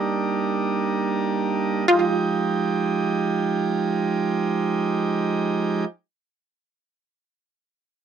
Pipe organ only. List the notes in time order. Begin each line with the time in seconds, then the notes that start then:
Already playing: G3 A#3 D4 D#4
1.88 F3 G#3 D#4 G4